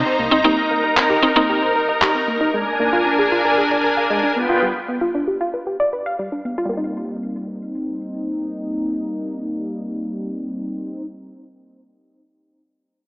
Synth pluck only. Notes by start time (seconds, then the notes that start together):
0.31 C4 D#4
0.44 A#3 C4 D#4
1.23 C4 D#4
1.36 A#3 C4 D#4